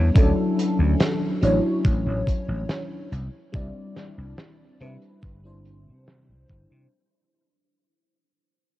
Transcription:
0.00 0.10 G3 medium
0.00 0.10 B3 medium
0.00 0.11 D4 medium
0.00 0.11 E4 medium
0.00 0.12 C#5 medium
0.14 0.31 D2 medium
0.14 1.37 F#3 medium
0.14 1.37 C#4 medium
0.14 1.37 D4 medium
0.14 1.38 E4 medium
0.14 1.38 A4 medium
0.14 kick loud
0.14 closed hi-hat medium
0.59 closed hi-hat medium
0.79 0.94 D2 medium
1.00 snare loud
1.00 closed hi-hat medium
1.41 1.58 A1 medium
1.41 3.08 F#3 medium
1.41 3.09 C#4 medium
1.41 3.09 D4 medium
1.41 3.09 E4 medium
1.41 3.10 C#5 medium
1.41 closed hi-hat medium
1.85 2.00 A1 medium
1.85 kick loud
1.85 closed hi-hat medium
2.06 2.21 A1 medium
2.27 kick medium
2.27 closed hi-hat medium
2.48 2.63 A1 medium
2.69 snare loud
2.69 closed hi-hat medium
3.12 3.27 C2 medium
3.12 closed hi-hat medium
3.52 3.69 C2 medium
3.52 4.75 G3 medium
3.52 4.75 C4 medium
3.52 4.76 D4 medium
3.52 4.76 E4 medium
3.52 4.76 D5 medium
3.52 kick loud
3.52 closed hi-hat medium
3.96 snare medium
3.96 closed hi-hat medium
4.18 4.32 C2 medium
4.38 snare loud
4.38 closed hi-hat medium
4.80 4.96 C3 medium
4.80 5.39 G3 medium
4.80 5.39 C4 medium
4.80 5.39 D4 medium
4.80 5.39 E4 medium
4.80 5.40 B4 medium
4.80 closed hi-hat medium
5.02 closed hi-hat soft
5.23 5.89 G1 medium
5.23 kick loud
5.23 closed hi-hat medium
5.43 6.86 G3 medium
5.43 6.87 C4 medium
5.43 6.87 D4 medium
5.43 6.87 E4 medium
5.43 6.88 C5 medium
5.65 closed hi-hat medium
5.87 6.31 C3 medium
6.08 snare loud
6.08 closed hi-hat medium
6.29 6.44 C2 medium
6.50 6.65 G1 medium
6.50 kick medium
6.50 closed hi-hat medium
6.71 6.86 C3 medium

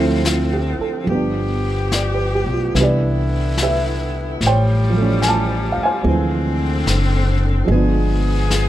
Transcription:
0.00 0.75 D2 medium
0.00 1.06 D3 medium
0.00 1.02 F3 soft
0.00 1.03 F3 medium
0.00 1.08 A3 soft
0.00 1.06 C4 medium
0.00 1.08 C4 soft
0.00 1.09 E4 medium
0.00 0.80 A4 medium
0.00 1.06 C5 medium
0.00 1.06 E5 medium
0.25 0.76 F4 soft
0.25 snare soft
0.25 hi-hat pedal soft
0.53 0.96 G4 soft
0.79 1.24 A4 soft
0.79 muted upright bass stroke soft
1.04 2.42 G1 medium
1.04 2.73 F3 soft
1.04 2.73 G3 soft
1.08 2.74 F3 medium
1.08 4.38 B3 medium
1.08 2.73 B3 soft
1.08 2.74 G4 medium
1.08 brush sweep soft
1.15 2.75 D4 soft
1.92 2.31 D5 soft
1.92 snare soft
1.92 hi-hat pedal soft
2.15 2.49 B4 soft
2.35 2.60 G4 soft
2.46 2.73 B1 medium
2.53 2.83 F4 soft
2.75 4.37 C2 medium
2.75 4.40 D3 medium
2.75 4.41 E3 soft
2.75 4.41 G3 soft
2.75 4.41 B3 soft
2.75 4.42 D4 soft
2.75 4.40 E4 medium
2.75 brush sweep soft
2.75 snare soft
2.81 3.61 G4 soft
2.81 3.61 B4 soft
2.81 3.58 D5 medium
3.58 snare soft
3.58 hi-hat pedal soft
3.62 4.39 G4 soft
3.62 4.40 B4 soft
3.62 4.40 E5 medium
4.41 5.74 A1 medium
4.41 6.04 F3 medium
4.41 6.05 G3 medium
4.41 brush sweep soft
4.41 snare soft
4.46 5.84 C5 medium
4.46 6.05 C#5 medium
4.46 5.24 G5 medium
4.90 6.02 F3 soft
4.90 6.05 G3 soft
4.97 6.07 A3 soft
4.97 6.09 C#4 soft
5.22 5.25 G#5 medium
5.22 snare soft
5.22 hi-hat pedal soft
5.28 5.72 A5 medium
5.72 5.80 F5 medium
5.77 muted upright bass stroke soft
5.83 7.69 C5 medium
5.83 7.69 F5 medium
5.83 7.68 G#5 medium
6.03 6.83 D2 medium
6.03 7.63 F3 soft
6.03 7.66 G#3 soft
6.03 7.70 C4 soft
6.03 7.68 C4 medium
6.03 brush sweep soft
6.08 7.69 D3 medium
6.08 7.71 E3 soft
6.86 7.65 F#1 medium
6.86 snare soft
6.86 hi-hat pedal soft
7.65 8.69 G1 medium
7.65 8.69 F3 medium
7.65 8.69 G#3 soft
7.69 8.69 F3 medium
7.69 8.69 B3 medium
7.69 8.69 B3 soft
7.69 8.69 G#4 medium
7.69 brush sweep soft
7.75 8.69 D4 medium
8.50 snare soft
8.50 hi-hat pedal medium

